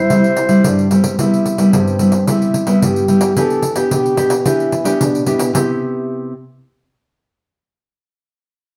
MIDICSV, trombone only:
0, 0, Header, 1, 2, 480
1, 0, Start_track
1, 0, Key_signature, 0, "major"
1, 0, Tempo, 544465
1, 1051, Time_signature, 4, 2, 24, 8
1, 7726, End_track
2, 0, Start_track
2, 0, Title_t, "Trombone"
2, 0, Program_c, 0, 57
2, 0, Note_on_c, 0, 64, 108
2, 539, Note_off_c, 0, 64, 0
2, 572, Note_on_c, 0, 62, 82
2, 794, Note_off_c, 0, 62, 0
2, 805, Note_on_c, 0, 60, 74
2, 1031, Note_off_c, 0, 60, 0
2, 1057, Note_on_c, 0, 64, 93
2, 1530, Note_on_c, 0, 60, 91
2, 1544, Note_off_c, 0, 64, 0
2, 2015, Note_on_c, 0, 64, 93
2, 2028, Note_off_c, 0, 60, 0
2, 2487, Note_off_c, 0, 64, 0
2, 2492, Note_on_c, 0, 67, 98
2, 2970, Note_on_c, 0, 69, 117
2, 2983, Note_off_c, 0, 67, 0
2, 3311, Note_off_c, 0, 69, 0
2, 3455, Note_on_c, 0, 67, 110
2, 3933, Note_on_c, 0, 64, 96
2, 3946, Note_off_c, 0, 67, 0
2, 4418, Note_on_c, 0, 62, 83
2, 4431, Note_off_c, 0, 64, 0
2, 4641, Note_off_c, 0, 62, 0
2, 4646, Note_on_c, 0, 64, 78
2, 4871, Note_off_c, 0, 64, 0
2, 4899, Note_on_c, 0, 64, 68
2, 5118, Note_off_c, 0, 64, 0
2, 7726, End_track
0, 0, End_of_file